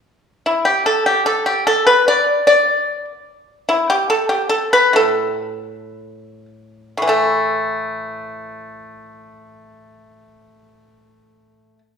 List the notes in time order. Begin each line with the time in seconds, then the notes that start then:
0.46 E4
0.65 G4
0.86 A4
1.06 G4
1.26 A4
1.46 G4
1.67 A4
1.87 B4
2.08 D5
2.47 D5
3.69 E4
3.90 G4
4.10 A4
4.29 G4
4.49 A4
4.73 B4
4.93 A2 A4
6.97 A2
7.02 E3
7.07 A3 A4